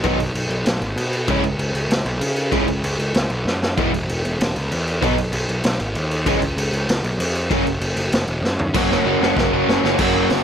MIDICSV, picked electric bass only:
0, 0, Header, 1, 2, 480
1, 0, Start_track
1, 0, Tempo, 311042
1, 68, Time_signature, 4, 2, 24, 8
1, 16102, End_track
2, 0, Start_track
2, 0, Title_t, "Picked electric bass"
2, 0, Program_c, 0, 34
2, 57, Note_on_c, 0, 35, 87
2, 279, Note_off_c, 0, 35, 0
2, 289, Note_on_c, 0, 35, 86
2, 516, Note_off_c, 0, 35, 0
2, 525, Note_on_c, 0, 35, 95
2, 752, Note_off_c, 0, 35, 0
2, 761, Note_on_c, 0, 35, 93
2, 1003, Note_off_c, 0, 35, 0
2, 1018, Note_on_c, 0, 35, 91
2, 1246, Note_off_c, 0, 35, 0
2, 1255, Note_on_c, 0, 32, 90
2, 1475, Note_off_c, 0, 32, 0
2, 1484, Note_on_c, 0, 47, 93
2, 1953, Note_off_c, 0, 47, 0
2, 1976, Note_on_c, 0, 37, 94
2, 2198, Note_off_c, 0, 37, 0
2, 2208, Note_on_c, 0, 37, 94
2, 2430, Note_off_c, 0, 37, 0
2, 2439, Note_on_c, 0, 37, 92
2, 2682, Note_off_c, 0, 37, 0
2, 2689, Note_on_c, 0, 37, 88
2, 2911, Note_off_c, 0, 37, 0
2, 2920, Note_on_c, 0, 37, 86
2, 3160, Note_off_c, 0, 37, 0
2, 3169, Note_on_c, 0, 35, 95
2, 3397, Note_off_c, 0, 35, 0
2, 3406, Note_on_c, 0, 49, 96
2, 3875, Note_off_c, 0, 49, 0
2, 3886, Note_on_c, 0, 37, 104
2, 4114, Note_off_c, 0, 37, 0
2, 4123, Note_on_c, 0, 37, 87
2, 4364, Note_off_c, 0, 37, 0
2, 4376, Note_on_c, 0, 37, 94
2, 4598, Note_off_c, 0, 37, 0
2, 4607, Note_on_c, 0, 37, 86
2, 4847, Note_off_c, 0, 37, 0
2, 4853, Note_on_c, 0, 37, 86
2, 5082, Note_off_c, 0, 37, 0
2, 5091, Note_on_c, 0, 35, 80
2, 5317, Note_off_c, 0, 35, 0
2, 5326, Note_on_c, 0, 42, 91
2, 5795, Note_off_c, 0, 42, 0
2, 5825, Note_on_c, 0, 28, 100
2, 6051, Note_off_c, 0, 28, 0
2, 6060, Note_on_c, 0, 28, 91
2, 6293, Note_off_c, 0, 28, 0
2, 6300, Note_on_c, 0, 28, 96
2, 6533, Note_off_c, 0, 28, 0
2, 6555, Note_on_c, 0, 28, 90
2, 6781, Note_off_c, 0, 28, 0
2, 6790, Note_on_c, 0, 28, 95
2, 7018, Note_off_c, 0, 28, 0
2, 7035, Note_on_c, 0, 37, 88
2, 7262, Note_off_c, 0, 37, 0
2, 7274, Note_on_c, 0, 40, 88
2, 7729, Note_off_c, 0, 40, 0
2, 7749, Note_on_c, 0, 35, 96
2, 7967, Note_off_c, 0, 35, 0
2, 7977, Note_on_c, 0, 35, 82
2, 8212, Note_off_c, 0, 35, 0
2, 8226, Note_on_c, 0, 35, 98
2, 8457, Note_off_c, 0, 35, 0
2, 8466, Note_on_c, 0, 35, 90
2, 8693, Note_off_c, 0, 35, 0
2, 8702, Note_on_c, 0, 35, 92
2, 8935, Note_off_c, 0, 35, 0
2, 8946, Note_on_c, 0, 32, 95
2, 9177, Note_off_c, 0, 32, 0
2, 9187, Note_on_c, 0, 39, 90
2, 9645, Note_off_c, 0, 39, 0
2, 9654, Note_on_c, 0, 37, 97
2, 9884, Note_off_c, 0, 37, 0
2, 9893, Note_on_c, 0, 37, 85
2, 10121, Note_off_c, 0, 37, 0
2, 10131, Note_on_c, 0, 37, 96
2, 10360, Note_off_c, 0, 37, 0
2, 10369, Note_on_c, 0, 37, 84
2, 10607, Note_off_c, 0, 37, 0
2, 10627, Note_on_c, 0, 37, 98
2, 10847, Note_off_c, 0, 37, 0
2, 10856, Note_on_c, 0, 35, 91
2, 11070, Note_off_c, 0, 35, 0
2, 11080, Note_on_c, 0, 41, 94
2, 11551, Note_off_c, 0, 41, 0
2, 11581, Note_on_c, 0, 30, 101
2, 11794, Note_off_c, 0, 30, 0
2, 11803, Note_on_c, 0, 30, 90
2, 12031, Note_off_c, 0, 30, 0
2, 12040, Note_on_c, 0, 30, 85
2, 12278, Note_off_c, 0, 30, 0
2, 12287, Note_on_c, 0, 30, 90
2, 12521, Note_off_c, 0, 30, 0
2, 12530, Note_on_c, 0, 30, 97
2, 12757, Note_off_c, 0, 30, 0
2, 12767, Note_on_c, 0, 28, 85
2, 12984, Note_off_c, 0, 28, 0
2, 12994, Note_on_c, 0, 42, 103
2, 13468, Note_off_c, 0, 42, 0
2, 13485, Note_on_c, 0, 30, 100
2, 13808, Note_off_c, 0, 30, 0
2, 13972, Note_on_c, 0, 30, 90
2, 14135, Note_off_c, 0, 30, 0
2, 14221, Note_on_c, 0, 30, 80
2, 14381, Note_off_c, 0, 30, 0
2, 14451, Note_on_c, 0, 30, 92
2, 14614, Note_off_c, 0, 30, 0
2, 14696, Note_on_c, 0, 30, 88
2, 14857, Note_off_c, 0, 30, 0
2, 14936, Note_on_c, 0, 30, 99
2, 15097, Note_off_c, 0, 30, 0
2, 15187, Note_on_c, 0, 30, 108
2, 15345, Note_off_c, 0, 30, 0
2, 15406, Note_on_c, 0, 30, 106
2, 15634, Note_off_c, 0, 30, 0
2, 15670, Note_on_c, 0, 30, 91
2, 15887, Note_off_c, 0, 30, 0
2, 15911, Note_on_c, 0, 30, 91
2, 16102, Note_off_c, 0, 30, 0
2, 16102, End_track
0, 0, End_of_file